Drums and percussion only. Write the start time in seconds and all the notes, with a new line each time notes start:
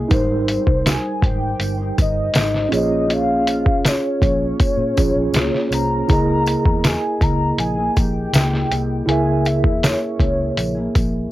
0.10 kick, closed hi-hat, tambourine
0.48 closed hi-hat, tambourine
0.67 kick
0.86 snare, closed hi-hat, tambourine
1.22 kick, closed hi-hat
1.60 closed hi-hat, tambourine
1.98 kick, closed hi-hat, tambourine
2.34 snare, closed hi-hat, tambourine
2.54 snare
2.72 closed hi-hat, tambourine
3.10 closed hi-hat, tambourine
3.47 closed hi-hat, tambourine
3.66 kick
3.85 snare, closed hi-hat, tambourine
4.22 kick, closed hi-hat, tambourine
4.60 kick, closed hi-hat, tambourine
4.97 kick, closed hi-hat, tambourine
5.34 snare, closed hi-hat, tambourine
5.54 snare
5.72 closed hi-hat, tambourine
6.09 kick, closed hi-hat, tambourine
6.46 closed hi-hat, tambourine
6.65 kick
6.84 snare, closed hi-hat, tambourine
7.21 kick, closed hi-hat, tambourine
7.58 closed hi-hat, tambourine
7.97 kick, closed hi-hat, tambourine
8.34 snare, closed hi-hat, tambourine
8.53 snare
8.72 closed hi-hat, tambourine
9.09 closed hi-hat
9.45 closed hi-hat, tambourine
9.64 kick
9.83 snare, closed hi-hat, tambourine
10.20 kick, closed hi-hat
10.57 closed hi-hat, tambourine
10.95 kick, closed hi-hat, tambourine